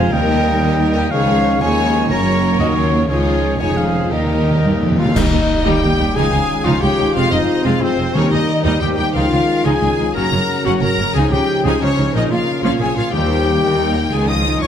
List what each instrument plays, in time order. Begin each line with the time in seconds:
Already playing: double bass section F1, cello section F2, trombone section C3 F3, french horn section G#3 F4, viola section G#3, violin section F4 C5, trumpet F5, flute G#5, oboe G#5
0.10 double bass section D#2, cello section D#2, trombone section D#3 G3, viola section G3 D#4, french horn section A#3 A#4, violin section A#4, trumpet D#5, flute G5, oboe G5
0.29 viola section D#3 A#3, violin section G4 D#5
0.45 viola section G3 D#4, violin section A#4
0.61 viola section D#3 A#3, violin section G4 D#5
0.77 viola section G3 D#4, violin section A#4
0.93 viola section D#3 A#3, violin section G4 A#4 D#5, flute G5, oboe G5
1.10 double bass section C#2, cello section C#2, trombone section D#3 G#3, viola section F3 D#4, french horn section C#4 G#4, violin section G#4 C#5, trumpet C#5, flute F5, oboe F5
1.59 double bass section D#2, cello section D#2, trombone section D#3 G#3, viola section F3 D#4, french horn section C#4 G#4, violin section G#4 C#5, trumpet C#5, oboe G#5, flute G#5
2.08 double bass section F#1, cello section F#2, trombone section C#3 A#3, french horn section F#3 C#4, viola section F#3 C#4, violin section A#4 C#5, trumpet C#5, oboe A#5, flute A#5
2.59 double bass section D#2, cello section D#2, violin section F#4, oboe D#5, flute D#5
2.75 violin section F4, oboe C#5, flute C#5
3.07 double bass section C#2, cello section C#2, trombone section D#3 G#3, viola section F3 D#4, french horn section C#4 F4, violin section F4 G#4 C#5, trumpet G#4, oboe C#5, flute C#5
3.58 double bass section F1, cello section F2, trombone section D#3 G#3, viola section F3 D#4, french horn section C#4 F4, trumpet G#4, violin section G#4 C#5, oboe G#5, flute G#5
3.77 violin section G#4, oboe F5, flute F5
3.87 violin section C5
4.09 cello section D#2, double bass section D#2, trombone section D#3 G3, timpani D#3, viola section D#3 D#4, french horn section A#3 D#4, violin section G4 A#4, trumpet A#4, oboe D#5, flute D#5
4.18 timpani D#3
4.27 timpani D#3
4.42 timpani D#3
4.51 timpani D#3
4.58 timpani D#3
4.63 cello section G2, timpani D#3
4.75 timpani D#3
4.81 cello section F2, timpani D#3
4.91 timpani D#3
4.98 cello section D#2, timpani D#3, trumpet F4, clarinet F4, violin section F5, flute F5
5.06 timpani D#3
5.13 cello section D#2, double bass section D#2, trombone section D#3 G3, viola section G3 D#4, french horn section A#3 D#4, clarinet D#4, trumpet D#4, flute D#5, violin section D#5, concert bass drum, crash
5.32 cello section D#2, double bass section D#2, viola section G3 D#4
5.64 cello section D#2, double bass section D#2, viola section G3 D#4, trumpet G4, clarinet G4, flute G5, violin section G5
5.82 double bass section D#2, cello section D#2, viola section G3 D#4
5.98 cello section D#2, double bass section D#2, viola section G3 D#4
6.15 cello section C#2, double bass section C#2, viola section F3 D#4, trombone section G#3, french horn section C#4 F4, clarinet G#4, trumpet G#4, violin section F5 G#5, flute G#5
6.33 cello section C#2, double bass section C#2, viola section F3 D#4
6.64 cello section C#2, double bass section C#2, viola section F3 D#4, trumpet F4, clarinet F4, violin section C#5 F5, flute F5
6.81 cello section C#2, double bass section C#2, viola section F3 D#4, clarinet G4, trumpet G4, flute G5, violin section G5
6.97 cello section C#2, double bass section C#2, viola section F3 D#4
7.14 double bass section F1, cello section F2, trombone section C3, viola section G#3 C4, french horn section C4, trumpet F4, clarinet F4, violin section C5 F5, flute F5
7.30 double bass section F1, cello section F2, viola section G#3 C4, trumpet D#4, clarinet D#4, flute D#5, violin section D#5
7.64 double bass section F1, cello section F2, viola section G#3 C4, trumpet F4, clarinet F4, violin section G#4 F5, flute F5
7.80 double bass section F1, cello section F2, viola section G#3 C4, clarinet C4, trumpet C4, flute C5, violin section C5
7.97 double bass section F1, cello section F2, viola section G#3 C4
8.14 double bass section D#2, cello section D#2, trombone section D#3 G3, timpani D#3, viola section G3 D#4, french horn section A#3 G4, trumpet C#4, clarinet C#4, violin section A#4 C#5, flute C#5
8.30 cello section D#2, double bass section D#2, viola section G3 D#4, clarinet D#4, trumpet D#4, violin section D#5, flute D#5
8.63 double bass section D#2, cello section D#2, viola section G3 D#4, trumpet D#4, clarinet D#4, violin section C5 D#5, flute D#5
8.80 double bass section D#2, cello section D#2, viola section G3 D#4, trumpet G4, clarinet G4, violin section G5, flute G5
8.97 cello section D#2, double bass section D#2, viola section G3 D#4, clarinet G4, trumpet G4, violin section G5, flute G5
9.13 double bass section C#2, cello section C#2, viola section F3 D#4, trombone section G#3, french horn section C#4 F4, clarinet F4, trumpet F4, violin section A#4 F5, flute F5
9.32 cello section C#2, double bass section C#2, viola section F3 D#4
9.65 cello section C#2, double bass section C#2, viola section F3 D#4, violin section G#4 G#5, clarinet G#4, trumpet G#4, flute G#5
9.82 cello section C#2, double bass section C#2, viola section F3 D#4
9.99 cello section C#2, double bass section C#2, viola section F3 D#4
10.13 double bass section F#1, cello section F#2, trombone section C#3 F#3, viola section F#3 C#4, violin section F#4 A#5, french horn section F#4, clarinet A#4, trumpet A#4, flute A#5
10.31 double bass section F#1, cello section F#2, viola section F#3 C#4
10.64 double bass section F#1, cello section F#2, viola section F#3 C#4, trumpet F#4, clarinet F#4, violin section A#4 F#5, flute F#5
10.81 double bass section F#1, cello section F#2, viola section F#3 C#4, clarinet A#4, trumpet A#4, violin section A#5, flute A#5
10.99 double bass section F#1, cello section F#2, viola section F#3 C#4
11.13 double bass section C#2, cello section C#3, trombone section F3, viola section F3 D#4, french horn section D#4, clarinet G#4, trumpet G#4, violin section G#4 G#5, flute G#5
11.30 double bass section C#2, cello section C#3, viola section F3 D#4, clarinet G4, trumpet G4, violin section G5, flute G5
11.64 double bass section C#2, cello section C#3, viola section F3 D#4, clarinet G#4, trumpet G#4, violin section C5 G#5, flute G#5
11.80 double bass section C#2, cello section C#3, viola section F3 D#4, clarinet C#4, trumpet C#4, violin section C#5, flute C#5
11.97 double bass section C#2, cello section C#3, viola section F3 D#4
12.14 double bass section A#1, cello section A#2, viola section F3 C#4, trombone section A#3, trumpet D#4, clarinet D#4, french horn section F4, violin section A#4 D#5, flute D#5
12.30 double bass section A#1, cello section A#2, viola section F3 C#4, clarinet F4, trumpet F4, violin section F5, flute F5
12.63 double bass section A#1, cello section A#2, viola section F3 C#4, clarinet F4, trumpet F4, violin section C#5 F5, flute F5
12.80 double bass section A#1, cello section A#2, viola section F3 C#4, trumpet G#4, clarinet G#4, violin section G#5, flute G#5
12.95 double bass section A#1, cello section A#2, viola section F3 C#4, clarinet F4, trumpet F4, violin section F5
13.00 flute F5
13.11 double bass section D#2, cello section D#2, trombone section D#3 G3, timpani D#3, viola section G3 D#4, french horn section A#3 D#4, clarinet G4, trumpet G4, violin section C5 G5
13.16 flute G5
13.28 viola section D#3 G4
13.44 viola section G3 D#4
13.62 double bass section D#2, cello section D#2, viola section D#3 G4, violin section A#4
13.80 viola section G3 D#4
13.95 viola section D#3 G4
14.11 cello section C#2, double bass section C#2, viola section D#3 D#4, trombone section F3, french horn section G#3, violin section F4 G#5, clarinet G#4, trumpet G#4, flute G#5
14.28 viola section F3 C#4, clarinet D#5, trumpet D#5, violin section D#6, flute D#6
14.44 viola section D#3 D#4
14.60 cello section C#2, double bass section C#2, viola section F3 C#4, clarinet C#5, trumpet C#5, violin section C#6, flute C#6